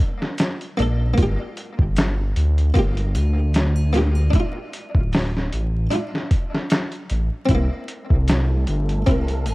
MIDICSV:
0, 0, Header, 1, 5, 480
1, 0, Start_track
1, 0, Key_signature, -1, "minor"
1, 0, Tempo, 789474
1, 719, Time_signature, 4, 2, 24, 8
1, 5803, End_track
2, 0, Start_track
2, 0, Title_t, "Harpsichord"
2, 0, Program_c, 0, 6
2, 469, Note_on_c, 0, 58, 91
2, 485, Note_on_c, 0, 62, 74
2, 498, Note_on_c, 0, 69, 91
2, 684, Note_off_c, 0, 58, 0
2, 691, Note_on_c, 0, 58, 83
2, 696, Note_off_c, 0, 62, 0
2, 702, Note_off_c, 0, 69, 0
2, 719, Note_on_c, 0, 65, 76
2, 746, Note_on_c, 0, 67, 85
2, 1639, Note_off_c, 0, 58, 0
2, 1653, Note_off_c, 0, 65, 0
2, 1666, Note_off_c, 0, 67, 0
2, 1668, Note_on_c, 0, 58, 81
2, 1683, Note_on_c, 0, 65, 75
2, 1696, Note_on_c, 0, 67, 94
2, 1764, Note_off_c, 0, 58, 0
2, 1772, Note_off_c, 0, 65, 0
2, 1779, Note_off_c, 0, 67, 0
2, 2390, Note_on_c, 0, 58, 85
2, 2406, Note_on_c, 0, 65, 81
2, 2418, Note_on_c, 0, 67, 97
2, 2608, Note_off_c, 0, 58, 0
2, 2616, Note_off_c, 0, 65, 0
2, 2619, Note_on_c, 0, 62, 76
2, 2622, Note_off_c, 0, 67, 0
2, 2648, Note_on_c, 0, 64, 78
2, 2676, Note_on_c, 0, 65, 90
2, 3563, Note_off_c, 0, 62, 0
2, 3577, Note_off_c, 0, 64, 0
2, 3590, Note_on_c, 0, 62, 84
2, 3591, Note_off_c, 0, 65, 0
2, 3603, Note_on_c, 0, 64, 76
2, 3617, Note_on_c, 0, 65, 94
2, 3685, Note_off_c, 0, 62, 0
2, 3692, Note_off_c, 0, 64, 0
2, 3699, Note_off_c, 0, 65, 0
2, 4533, Note_on_c, 0, 60, 76
2, 4561, Note_on_c, 0, 64, 76
2, 4589, Note_on_c, 0, 58, 89
2, 5480, Note_off_c, 0, 60, 0
2, 5494, Note_off_c, 0, 64, 0
2, 5508, Note_off_c, 0, 58, 0
2, 5510, Note_on_c, 0, 60, 85
2, 5523, Note_on_c, 0, 64, 80
2, 5538, Note_on_c, 0, 70, 95
2, 5605, Note_off_c, 0, 60, 0
2, 5612, Note_off_c, 0, 64, 0
2, 5619, Note_off_c, 0, 70, 0
2, 5803, End_track
3, 0, Start_track
3, 0, Title_t, "Synth texture"
3, 0, Program_c, 1, 99
3, 4563, Note_on_c, 1, 69, 84
3, 4565, Note_on_c, 1, 57, 85
3, 5803, Note_off_c, 1, 57, 0
3, 5803, Note_off_c, 1, 69, 0
3, 5803, End_track
4, 0, Start_track
4, 0, Title_t, "Detuned saw bass"
4, 0, Program_c, 2, 39
4, 479, Note_on_c, 2, 34, 94
4, 693, Note_off_c, 2, 34, 0
4, 719, Note_on_c, 2, 31, 93
4, 834, Note_off_c, 2, 31, 0
4, 1090, Note_on_c, 2, 31, 93
4, 1418, Note_off_c, 2, 31, 0
4, 1437, Note_on_c, 2, 38, 89
4, 1652, Note_off_c, 2, 38, 0
4, 1680, Note_on_c, 2, 31, 80
4, 1916, Note_on_c, 2, 38, 84
4, 1925, Note_off_c, 2, 31, 0
4, 2616, Note_off_c, 2, 38, 0
4, 3012, Note_on_c, 2, 26, 90
4, 3339, Note_off_c, 2, 26, 0
4, 3362, Note_on_c, 2, 33, 101
4, 3574, Note_off_c, 2, 33, 0
4, 4319, Note_on_c, 2, 33, 81
4, 4434, Note_off_c, 2, 33, 0
4, 4557, Note_on_c, 2, 36, 98
4, 4673, Note_off_c, 2, 36, 0
4, 4930, Note_on_c, 2, 36, 88
4, 5258, Note_off_c, 2, 36, 0
4, 5278, Note_on_c, 2, 31, 99
4, 5492, Note_off_c, 2, 31, 0
4, 5516, Note_on_c, 2, 36, 88
4, 5761, Note_on_c, 2, 31, 86
4, 5770, Note_off_c, 2, 36, 0
4, 5803, Note_off_c, 2, 31, 0
4, 5803, End_track
5, 0, Start_track
5, 0, Title_t, "Drums"
5, 0, Note_on_c, 9, 36, 86
5, 0, Note_on_c, 9, 42, 60
5, 58, Note_off_c, 9, 36, 0
5, 58, Note_off_c, 9, 42, 0
5, 136, Note_on_c, 9, 38, 48
5, 197, Note_off_c, 9, 38, 0
5, 233, Note_on_c, 9, 42, 83
5, 233, Note_on_c, 9, 82, 69
5, 244, Note_on_c, 9, 38, 102
5, 294, Note_off_c, 9, 42, 0
5, 294, Note_off_c, 9, 82, 0
5, 305, Note_off_c, 9, 38, 0
5, 370, Note_on_c, 9, 42, 42
5, 431, Note_off_c, 9, 42, 0
5, 478, Note_on_c, 9, 42, 62
5, 539, Note_off_c, 9, 42, 0
5, 715, Note_on_c, 9, 42, 85
5, 716, Note_on_c, 9, 36, 105
5, 775, Note_off_c, 9, 42, 0
5, 777, Note_off_c, 9, 36, 0
5, 956, Note_on_c, 9, 42, 60
5, 1017, Note_off_c, 9, 42, 0
5, 1088, Note_on_c, 9, 36, 85
5, 1149, Note_off_c, 9, 36, 0
5, 1193, Note_on_c, 9, 82, 78
5, 1195, Note_on_c, 9, 42, 84
5, 1206, Note_on_c, 9, 38, 112
5, 1254, Note_off_c, 9, 82, 0
5, 1256, Note_off_c, 9, 42, 0
5, 1267, Note_off_c, 9, 38, 0
5, 1437, Note_on_c, 9, 42, 64
5, 1498, Note_off_c, 9, 42, 0
5, 1570, Note_on_c, 9, 42, 42
5, 1631, Note_off_c, 9, 42, 0
5, 1675, Note_on_c, 9, 42, 75
5, 1676, Note_on_c, 9, 36, 102
5, 1736, Note_off_c, 9, 42, 0
5, 1737, Note_off_c, 9, 36, 0
5, 1808, Note_on_c, 9, 42, 42
5, 1869, Note_off_c, 9, 42, 0
5, 1916, Note_on_c, 9, 42, 62
5, 1917, Note_on_c, 9, 81, 76
5, 1976, Note_off_c, 9, 42, 0
5, 1977, Note_off_c, 9, 81, 0
5, 2154, Note_on_c, 9, 42, 78
5, 2154, Note_on_c, 9, 82, 75
5, 2165, Note_on_c, 9, 38, 101
5, 2215, Note_off_c, 9, 42, 0
5, 2215, Note_off_c, 9, 82, 0
5, 2226, Note_off_c, 9, 38, 0
5, 2286, Note_on_c, 9, 81, 85
5, 2347, Note_off_c, 9, 81, 0
5, 2396, Note_on_c, 9, 42, 64
5, 2407, Note_on_c, 9, 38, 48
5, 2457, Note_off_c, 9, 42, 0
5, 2468, Note_off_c, 9, 38, 0
5, 2525, Note_on_c, 9, 81, 76
5, 2586, Note_off_c, 9, 81, 0
5, 2635, Note_on_c, 9, 42, 80
5, 2636, Note_on_c, 9, 36, 103
5, 2696, Note_off_c, 9, 42, 0
5, 2697, Note_off_c, 9, 36, 0
5, 2879, Note_on_c, 9, 42, 60
5, 2940, Note_off_c, 9, 42, 0
5, 3008, Note_on_c, 9, 36, 88
5, 3069, Note_off_c, 9, 36, 0
5, 3117, Note_on_c, 9, 82, 75
5, 3118, Note_on_c, 9, 46, 74
5, 3129, Note_on_c, 9, 38, 115
5, 3177, Note_off_c, 9, 82, 0
5, 3178, Note_off_c, 9, 46, 0
5, 3189, Note_off_c, 9, 38, 0
5, 3262, Note_on_c, 9, 38, 37
5, 3323, Note_off_c, 9, 38, 0
5, 3358, Note_on_c, 9, 42, 63
5, 3418, Note_off_c, 9, 42, 0
5, 3594, Note_on_c, 9, 42, 85
5, 3655, Note_off_c, 9, 42, 0
5, 3739, Note_on_c, 9, 38, 48
5, 3800, Note_off_c, 9, 38, 0
5, 3835, Note_on_c, 9, 36, 93
5, 3835, Note_on_c, 9, 42, 62
5, 3895, Note_off_c, 9, 42, 0
5, 3896, Note_off_c, 9, 36, 0
5, 3978, Note_on_c, 9, 38, 49
5, 4038, Note_off_c, 9, 38, 0
5, 4071, Note_on_c, 9, 42, 79
5, 4076, Note_on_c, 9, 82, 67
5, 4082, Note_on_c, 9, 38, 109
5, 4132, Note_off_c, 9, 42, 0
5, 4137, Note_off_c, 9, 82, 0
5, 4143, Note_off_c, 9, 38, 0
5, 4203, Note_on_c, 9, 42, 42
5, 4264, Note_off_c, 9, 42, 0
5, 4312, Note_on_c, 9, 42, 63
5, 4372, Note_off_c, 9, 42, 0
5, 4551, Note_on_c, 9, 42, 87
5, 4553, Note_on_c, 9, 36, 101
5, 4612, Note_off_c, 9, 42, 0
5, 4614, Note_off_c, 9, 36, 0
5, 4792, Note_on_c, 9, 42, 63
5, 4853, Note_off_c, 9, 42, 0
5, 4927, Note_on_c, 9, 36, 84
5, 4988, Note_off_c, 9, 36, 0
5, 5032, Note_on_c, 9, 42, 80
5, 5033, Note_on_c, 9, 82, 71
5, 5043, Note_on_c, 9, 38, 107
5, 5093, Note_off_c, 9, 42, 0
5, 5094, Note_off_c, 9, 82, 0
5, 5104, Note_off_c, 9, 38, 0
5, 5270, Note_on_c, 9, 42, 60
5, 5331, Note_off_c, 9, 42, 0
5, 5404, Note_on_c, 9, 42, 41
5, 5465, Note_off_c, 9, 42, 0
5, 5511, Note_on_c, 9, 42, 85
5, 5514, Note_on_c, 9, 36, 107
5, 5572, Note_off_c, 9, 42, 0
5, 5575, Note_off_c, 9, 36, 0
5, 5644, Note_on_c, 9, 42, 43
5, 5705, Note_off_c, 9, 42, 0
5, 5752, Note_on_c, 9, 42, 65
5, 5760, Note_on_c, 9, 81, 74
5, 5803, Note_off_c, 9, 42, 0
5, 5803, Note_off_c, 9, 81, 0
5, 5803, End_track
0, 0, End_of_file